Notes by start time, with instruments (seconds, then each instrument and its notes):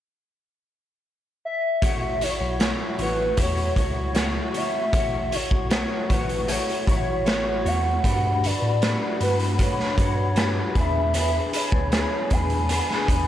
1.45 soft synth lead E5
1.82 tine electric piano A1, clean electric guitar A3 E4 F#4 C#5, kick, closed hi-hat
2.21 clean electric guitar E4 F#4 C#5, soft synth lead C#5, closed hi-hat
2.30 soft synth lead D5
2.38 tine electric piano B1, soft synth lead C#5
2.59 clean electric guitar A3 E4 F#4 C#5, snare, closed hi-hat
2.98 tine electric piano A1, clean electric guitar E4 F#4 C#5, soft synth lead B4, closed hi-hat
3.37 tine electric piano E2, clean electric guitar A3 E4 F#4 C#5, soft synth lead C#5, kick, closed hi-hat
3.57 closed hi-hat
3.76 tine electric piano C#2, clean electric guitar E4 F#4 C#5, kick, closed hi-hat
4.14 clean electric guitar A3 E4 F#4 C#5, snare, closed hi-hat
4.52 clean electric guitar E4 F#4 C#5, closed hi-hat
4.57 soft synth lead E5
4.92 tine electric piano A1, clean electric guitar A3 E4 F#4 C#5, kick, closed hi-hat
5.31 clean electric guitar E4 F#4 C#5, closed hi-hat
5.35 soft synth lead C#5
5.51 tine electric piano B1, kick
5.70 clean electric guitar A3 E4 F#4 C#5, snare, closed hi-hat
6.09 tine electric piano A1, clean electric guitar E4 F#4 C#5, soft synth lead B4, kick, closed hi-hat
6.29 closed hi-hat
6.47 clean electric guitar A3 E4 F#4 C#5, closed hi-hat
6.52 soft synth lead C#5
6.69 closed hi-hat
6.87 tine electric piano A1, clean electric guitar E4 F#4 C#5, kick, closed hi-hat
7.25 clean electric guitar A3 E4 F#4 C#5, snare, closed hi-hat
7.64 tine electric piano E2, clean electric guitar E4 F#4 C#5, soft synth lead F#5, closed hi-hat
8.03 tine electric piano G2, clean electric guitar G3 A3 D4 F#4 B4, kick, closed hi-hat
8.43 clean electric guitar D4 F#4 B4, soft synth lead D5, closed hi-hat
8.62 tine electric piano A2
8.82 clean electric guitar G3 A3 D4 F#4 B4, snare, closed hi-hat
9.20 tine electric piano G2, clean electric guitar D4 F#4 B4, soft synth lead B4, closed hi-hat
9.39 closed hi-hat
9.59 clean electric guitar A3 D4 F#4 B4, soft synth lead C#5, kick, closed hi-hat
9.80 snare
9.98 tine electric piano G2, clean electric guitar D4 F#4 B4, kick, closed hi-hat
10.36 clean electric guitar G3 A3 D4 F#4 B4, snare, closed hi-hat
10.75 tine electric piano E2, clean electric guitar D4 G#4 B4, kick, closed hi-hat
10.80 soft synth lead E5
11.14 clean electric guitar E3 B3 D4 G#4 B4, closed hi-hat
11.53 clean electric guitar D4 G#4 B4, soft synth lead C#5, closed hi-hat
11.72 tine electric piano D2, kick
11.92 clean electric guitar E3 B3 D4 G#4 B4, snare, closed hi-hat
12.30 tine electric piano E2, clean electric guitar D4 G#4 B4, soft synth lead G#5, kick, closed hi-hat
12.50 closed hi-hat
12.69 clean electric guitar B3 D4 G#4 B4, closed hi-hat
12.90 snare
13.08 tine electric piano E2, clean electric guitar D4 G#4 B4, kick, closed hi-hat